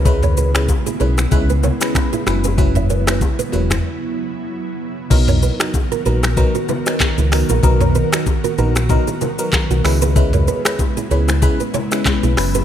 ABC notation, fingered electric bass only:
X:1
M:4/4
L:1/16
Q:"Swing 16ths" 1/4=95
K:B
V:1 name="Fingered electric bass" clef=bass
C,,6 B,,,2 C,,3 z3 F,,,2- | F,,,6 E,,,2 z8 | B,,,3 z3 A,,,3 z4 C,,2 A,,, | B,,,3 z3 A,,,3 z4 B,,, C,,2- |
C,,3 z3 C,,3 z4 B,,, F,,,2 |]